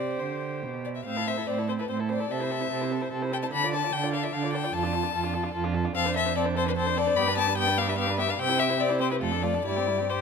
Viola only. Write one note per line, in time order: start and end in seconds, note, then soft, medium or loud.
0.00 0.82 C5 medium
1.06 1.18 C4 medium
1.17 1.28 E4 soft
1.27 1.39 C4 medium
1.37 1.47 E4 soft
1.47 1.60 C4 medium
1.58 1.70 E4 soft
1.69 1.81 C4 medium
1.79 1.89 E4 soft
1.89 2.01 C4 soft
1.99 2.11 E4 soft
2.09 2.21 C4 soft
2.20 2.29 E4 medium
2.30 2.41 C4 medium
2.40 2.52 E4 soft
2.51 2.62 C4 soft
2.60 2.71 E4 soft
2.72 2.83 C4 medium
2.81 2.93 E4 soft
2.91 3.03 C4 medium
3.01 3.11 E4 soft
3.12 3.24 C4 medium
3.22 3.34 E4 soft
3.32 3.44 C4 soft
3.43 3.53 E4 medium
3.53 3.65 D4 medium
3.63 3.74 F4 soft
3.73 3.85 D4 soft
3.83 3.92 F4 soft
3.93 4.05 D4 medium
4.03 4.14 F4 soft
4.13 4.25 D4 medium
4.23 4.32 F4 soft
4.33 4.45 D4 medium
4.43 4.54 F4 medium
4.53 4.65 D4 medium
4.64 4.73 F4 medium
4.74 4.85 F4 medium
4.83 4.95 D4 medium
4.93 5.05 F4 medium
5.03 5.13 D4 medium
5.14 5.25 F4 medium
5.24 5.35 D4 medium
5.34 5.45 F4 medium
5.44 5.53 D4 medium
5.54 5.66 F4 medium
5.64 5.76 D4 medium
5.75 5.86 F4 medium
5.85 5.95 D4 medium
5.95 6.08 C4 medium
6.06 6.17 D4 medium
6.16 6.27 C4 medium
6.25 6.36 D4 medium
6.36 6.47 C4 medium
6.46 6.57 D4 medium
6.56 6.67 C4 medium
6.66 6.76 D4 medium
6.77 6.88 C4 medium
6.86 6.98 D4 medium
6.96 7.07 C4 medium
7.06 7.16 D4 medium
7.16 7.28 B3 medium
7.26 7.38 D4 medium
7.37 7.49 B3 medium
7.47 7.56 D4 medium
7.57 7.69 B3 medium
7.67 7.79 D4 medium
7.78 7.89 B3 medium
7.87 7.97 D4 medium
7.98 8.09 B3 medium
8.07 8.20 D4 medium
8.18 8.29 B3 medium
8.28 8.38 D4 medium
8.39 8.50 C4 medium
8.49 8.60 E4 medium
8.58 8.71 C4 medium
8.69 8.79 E4 medium
8.79 8.92 C4 medium
8.90 9.02 E4 medium
9.00 9.12 C4 medium
9.11 9.21 E4 medium
9.21 9.33 A3 medium
9.32 9.45 D4 medium
9.44 9.56 A3 medium
9.54 9.65 D4 medium
9.66 9.79 G3 medium
9.78 9.90 C4 medium
9.89 10.02 G3 medium
10.00 10.11 C4 medium
10.11 10.21 G3 medium